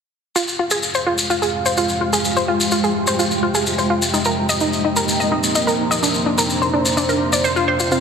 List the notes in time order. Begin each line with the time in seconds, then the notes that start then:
0.36 F2 C3 G#3 F4 G4 F5, maracas
0.48 maracas
0.59 F4
0.68 G#3 G#4, maracas
0.83 G5, maracas
0.94 C5, maracas
1.07 F4
1.18 maracas
1.26 F4 C6, maracas
1.42 G#4, maracas
1.66 C5, maracas
1.77 F4, maracas
1.89 maracas
2.01 F4
2.13 G#4, maracas
2.25 maracas
2.36 C5, maracas
2.48 F4
2.60 maracas
2.71 F4, maracas
2.84 G#4, maracas
3.07 C5, maracas
3.19 F4, maracas
3.31 maracas
3.43 F4
3.55 G#4, maracas
3.66 maracas
3.78 C5, maracas
3.90 F4
4.02 maracas
4.14 A#3 D#4 D#5, maracas
4.22 A#4, maracas
4.34 A#5
4.49 D#5, maracas
4.60 D#4, maracas
4.73 maracas
4.84 D#4
4.96 A#4, maracas
5.08 maracas
5.20 D#5, maracas
5.32 D#4
5.43 maracas
5.55 D#4, maracas
5.67 A#4, maracas
5.91 D#5, maracas
6.03 D4 C5 D5, maracas
6.14 maracas
6.26 D4
6.32 C5 F5
6.38 A#4, maracas
6.50 maracas
6.62 C5, maracas
6.73 D4
6.85 maracas
6.97 D4, maracas
7.09 A#4, maracas
7.33 D5, maracas
7.44 C5, maracas
7.56 F4, maracas
7.68 C5
7.80 F4, maracas
7.91 G#3 C4 F4 G#4, maracas